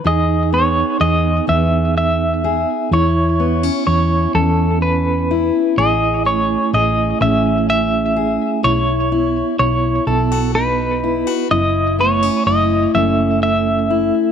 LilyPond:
<<
  \new Staff \with { instrumentName = "Clean electric guitar" } { \time 6/8 \key e \major \tempo 4. = 42 dis''8 cis''8 dis''8 e''8 e''4 | cis''4 cis''8 a'8 b'4 | dis''8 cis''8 dis''8 e''8 e''4 | cis''4 cis''8 a'8 b'4 |
dis''8 cis''8 dis''8 e''8 e''4 | }
  \new Staff \with { instrumentName = "Steel-string acoustic guitar" } { \time 6/8 \key e \major << { gis'8 b8 gis'8 b4 gis'8 | e'8 b16 cis'16 e'8 cis'4 e'8 | gis'8 cis'8 gis'8 cis'4 gis'8 | e'8 e'8 e'8 e'16 fis'16 dis'8 e'16 fis'16 |
e'8 b16 cis'16 e'8 cis'4 e'8 | } \\ { e,4 r8 e4 r8 | e,4 r8 e4 r8 | a,4 r8 e4 r8 | b,4 r8 b,4 r8 |
fis,4 r8 fis4 r8 | } >> }
  \new Staff \with { instrumentName = "Vibraphone" } { \time 6/8 \key e \major dis'8 b4 <b gis'>4. | e'8 b4 <b cis'>4. | e'8 a4 <a cis' gis'>4. | e'8 b4 b4. |
e'8 a4 <a cis' a'>4. | }
  \new Staff \with { instrumentName = "Fingered electric bass" } { \clef bass \time 6/8 \key e \major e,4 e,8 e,4. | e,4 e,8 e,4. | a,,4 a,,8 a,,4. | b,,4 b,,8 b,,4. |
fis,,4 fis,,8 fis,,4. | }
>>